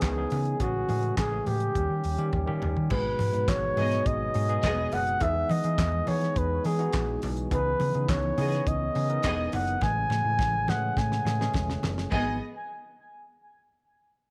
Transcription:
Already playing: E3 B3 C#4 D#4 G#4 A#4 C#5
0.01 C#2 G#4, kick, snare, clap, closed hi-hat, muted conga, high conga
0.17 E3 B3 C#4 D#4 G#4
0.30 C#3, open hi-hat, muted conga, low conga
0.45 closed hi-hat
0.60 A1 C#3 E3 G#3 A3 C#4 F#4 G#4, kick, closed hi-hat, low conga
0.88 A2 E3 G#3 A3 C#4 G#4, open hi-hat, high conga
1.03 closed hi-hat
1.17 A1 G#4, kick, snare, clap, closed hi-hat, muted conga, high conga
1.31 E3 G#3 A3 C#4 G#4, high conga
1.46 A2 G4, open hi-hat, muted conga, high conga, low conga
1.60 closed hi-hat
1.75 D#2 D#3 G3 A#3 C#4 G4, kick, closed hi-hat
1.90 D#3
2.04 D#2, open hi-hat, muted conga
2.17 D#3 G3 A#3 C#4 G4, closed hi-hat
2.33 D#2, kick, high tom, muted conga, high conga
2.46 D#3 G3 A#3 C#4 G4, mid tom
2.62 D#2, mid tom, low conga
2.76 D#3, floor tom
2.90 G#1 B2 F#3 G#3 B3 D#4 F#4 G#4 B4, kick, crash, muted conga, low conga
3.19 G#2, open hi-hat, muted conga, high conga
3.33 G#2 F#3 G#3 B3 D#4 B4, closed hi-hat
3.48 G#1 C#5, kick, snare, clap, closed hi-hat, muted conga, high conga
3.63 high conga
3.76 G#2 F#3 G#3 B3 D#4 G#4 D#5, open hi-hat, muted conga, high conga, low conga
3.91 snare, closed hi-hat
4.06 G#1 D#5, kick, closed hi-hat, muted conga
4.34 G#2 F#3 G#3 B3 D#4 G#4, open hi-hat, muted conga
4.48 F#3 G#3 B3 D#4 G#4, closed hi-hat
4.63 E1 B3 G#4 D#5, kick, snare, clap, closed hi-hat, muted conga, high conga
4.92 F#1 F#5, open hi-hat, low conga
5.07 closed hi-hat
5.20 E2 E3 G#3 B3 D#4 G#4 E5, kick, closed hi-hat, low conga
5.49 E3 D#5, open hi-hat, muted conga, high conga
5.63 E3 G#3 B3 D#4 G#4, closed hi-hat
5.78 E2, kick, snare, clap, closed hi-hat, muted conga, high conga
5.92 high conga
6.06 E3 G#3 B3 D#4 G#4 C#5, open hi-hat, muted conga, high conga, low conga
6.21 snare, closed hi-hat
6.36 E2 B4, kick, closed hi-hat, muted conga
6.64 E3 G#3 B3 D#4 G#4, open hi-hat
6.78 E3 G#3 B3 D#4 F#4, closed hi-hat
6.93 A#1, kick, snare, clap, closed hi-hat, high conga
7.22 B1, open hi-hat, muted conga, low conga
7.37 closed hi-hat
7.51 C#2 E3 B3 C#4 D#4 G#4 B4, kick, closed hi-hat, muted conga, low conga
7.80 C#3, open hi-hat, muted conga, high conga
7.94 C#3 E3 B3 C#4 D#4 G#4, closed hi-hat
8.09 C#2 C#5, kick, snare, clap, closed hi-hat, high conga
8.23 high conga
8.37 C#3 E3 B3 C#4 D#4 G#4 D#5, open hi-hat, muted conga, high conga, low conga
8.52 snare, closed hi-hat
8.67 C#2 D#5, kick, closed hi-hat
8.94 C#3 E3 B3 C#4 D#4 G#4, open hi-hat, muted conga
9.09 E3 B3 C#4 D#4 A#4, closed hi-hat
9.23 E1 B3 G#4 D#5, kick, snare, clap, closed hi-hat, muted conga, high conga
9.52 F#1 F#5, open hi-hat, muted conga, low conga
9.67 closed hi-hat
9.81 A1 C#3 E3 G#3 A3 C#4 G#4 G#5, kick, snare, muted conga, low conga
10.10 A2, snare, muted conga, high conga
10.24 A2 E3 G#3 A3 C#4 E4
10.39 A1, kick, snare, high conga
10.53 high conga
10.67 A2 E3 G#3 A3 C#4 G#4 F#5, snare, muted conga, high conga, low conga
10.97 A2 G#5, kick, snare, muted conga
11.12 snare
11.25 A2 E3 G#3 A3 C#4 G#4, snare, muted conga
11.39 E3 G#3 A3 C#4 G#4, snare
11.54 E1, kick, snare, muted conga, high conga
11.70 snare
11.82 F#1, snare, muted conga, low conga
11.98 snare
12.12 G#1 F#3 G#3 B3 D#4 G#4 D#5 G#5, kick, crash, high conga

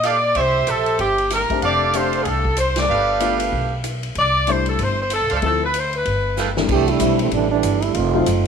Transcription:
Already playing: A#2
0.03 G4 A4 D5 F5, hi-hat pedal, ride
0.35 C2 G4 C5 E5, kick, ride
0.67 A#1 A4, hi-hat pedal, ride
0.86 ride
0.99 G1 G4, kick, ride
1.18 ride
1.30 A#4, snare, hi-hat pedal, ride
1.50 A3 C4 D4 G4, muted upright bass stroke, kick, ride
1.62 F1 G4 A4 D5 F5, kick, ride
1.93 A3 C4 D4 G4 C5, hi-hat pedal, ride
2.13 ride
2.21 C2 G#4, ride
2.26 A4, kick
2.45 kick
2.57 C5, hi-hat pedal, ride
2.76 D5, snare, ride
2.88 G1 G4 A4 B4 F5
3.20 A3 B3 D4 F4, hi-hat pedal, ride
3.40 ride
3.52 B1, kick
3.84 hi-hat pedal, ride
4.03 ride
4.15 C2 D5, kick, ride
4.47 G3 A3 D4 E4 C5, hi-hat pedal, ride
4.66 A4, ride
4.79 G1 C5, kick, ride
5.00 C5
5.10 A4, hi-hat pedal, ride
5.21 C2
5.30 C#2 A4 C5 D5 F5, ride
5.35 A4
5.42 D2 F3 A3 C4 E4 A4, kick, ride
5.64 B4
5.74 C5, hi-hat pedal, ride
5.93 B4, ride
6.05 G1, kick, ride
6.37 A4 B4 F5 G5, snare, hi-hat pedal
6.56 C2 E3 G3 A3 D4, snare
6.69 C2 E3 A3 D4 G4, kick, crash
6.88 G3 A3 D4 E4, ride
7.00 B1 G3 A3 C4 D4 E4, kick, hi-hat pedal, ride
7.19 E3 G3 A3 C4, ride
7.31 A1 E3 G3 A3 D4, kick, ride
7.52 E3 G3 A3 D4
7.63 G1, kick, hi-hat pedal, ride
7.82 G3 A3 D4 E4, ride
7.94 F1 A3 C4 D#4 F4, kick, ride
8.14 F#3 A3 C4 D#4 F4
8.26 F#1, kick, hi-hat pedal, ride

